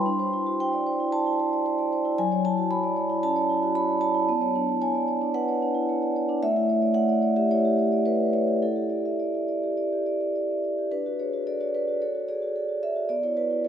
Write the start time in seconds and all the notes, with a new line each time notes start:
Already playing: C6
0.06 D4
0.19 C5
0.33 E4
0.46 F#4
0.60 C5 G5
0.73 D5
0.87 C5
1.00 E4
1.12 C5 A5
1.27 E4
1.40 C5
1.53 D5
1.66 C5
1.79 D5
1.93 C5
2.05 E4
2.18 F#3 G#5
2.32 C#5
2.45 E4 A5
2.58 F#4
2.71 C#5 B5
2.83 D5
2.96 C#5
3.10 E4
3.23 C#4 A5
3.36 C#5
3.50 E4
3.63 F#4
3.75 C#5 B5
3.89 D5
4.01 C#5 A5
4.14 E4
4.29 B3
4.42 C#5
4.55 D4
4.69 E4
4.81 C#5 G#5
4.95 D5
5.08 C#5
5.21 D4
5.34 B4 F#5
5.48 C#5
5.62 D4
5.75 E4
5.89 C#5
6.03 D5
6.16 C#5
6.29 D4
6.43 A3 E5
6.57 E4
6.69 C#5
6.82 D5
6.94 C#5 F#5
7.09 D5
7.22 C#5
7.36 G4 E5
7.51 E4 C#5
7.65 G4
7.79 C#5
7.92 D5
8.06 B4 C#5
8.20 D5
8.33 C#5
8.47 G4
8.62 E4 A4
8.76 G4
8.90 D5
9.05 E5
9.20 D5
9.35 E5
9.48 D5
9.63 G4
9.77 D5
9.93 G4
10.06 D5
10.21 E5
10.36 D5
10.50 E5
10.64 D5
10.78 G4
10.91 D4 B4
11.06 F#4
11.19 G#4 C#5
11.33 F#4
11.47 A4 D5
11.60 F#4 C#5
11.74 A4 B4
11.88 F#4
12.02 A4 C#5
12.15 F#4
12.29 G#4 D5
12.42 F#4
12.56 A4
12.69 F#4
12.83 A4 E5
12.96 F#4
13.09 B3 D5
13.23 E4 C#5
13.37 F#4 B4
13.50 E4
13.64 A4 C#5